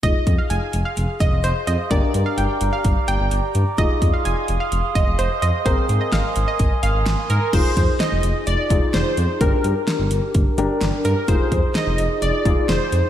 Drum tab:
CC |--------|--------|--------|--------|
HH |xxxxxxxx|xxxxxxxx|xxxxxxxx|xxxxxxxx|
SD |--------|--------|--------|--o---o-|
BD |oo---o--|o---o---|oo---o--|o---o---|

CC |x-------|--------|--------|
HH |xxxxxxxx|xxxxxxxx|xxxxxxxx|
SD |--o---o-|--o---o-|--o---o-|
BD |oo---o--|o---o---|oo---o--|